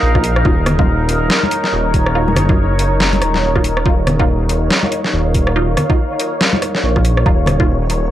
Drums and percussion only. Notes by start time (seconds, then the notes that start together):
0.15 kick, cross-stick
0.24 closed hi-hat
0.36 cross-stick
0.45 kick
0.66 cross-stick, closed hi-hat, low conga
0.79 kick
1.09 open hi-hat
1.30 snare
1.43 high conga
1.51 closed hi-hat
1.64 snare
1.94 kick, closed hi-hat
2.06 cross-stick
2.28 high conga
2.36 cross-stick, closed hi-hat, low conga
2.49 kick
2.79 open hi-hat
3.00 snare
3.13 closed hi-hat, high conga
3.22 cross-stick, closed hi-hat
3.34 snare, high conga
3.55 kick, cross-stick
3.64 closed hi-hat
3.77 cross-stick
3.86 kick
4.07 cross-stick, closed hi-hat, low conga
4.19 kick
4.49 open hi-hat
4.71 snare
4.83 high conga
4.92 closed hi-hat
5.04 snare
5.34 kick, closed hi-hat
5.47 cross-stick
5.77 cross-stick, closed hi-hat, low conga
5.90 kick
6.20 open hi-hat
6.41 snare
6.53 high conga
6.62 cross-stick, closed hi-hat
6.75 snare
6.96 kick, cross-stick
7.05 closed hi-hat
7.17 cross-stick
7.26 kick
7.46 cross-stick, closed hi-hat, low conga
7.60 kick
7.90 open hi-hat